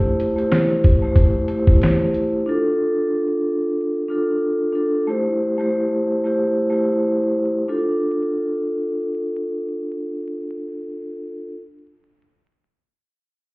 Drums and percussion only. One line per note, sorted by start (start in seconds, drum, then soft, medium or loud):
0.20 closed hi-hat medium
0.38 closed hi-hat medium
0.52 snare loud
0.52 snare medium
0.52 closed hi-hat medium
0.84 kick medium
0.84 closed hi-hat medium
1.16 kick medium
1.16 closed hi-hat loud
1.48 closed hi-hat medium
1.67 kick medium
1.81 snare loud
1.81 snare medium
1.81 closed hi-hat medium
2.14 closed hi-hat medium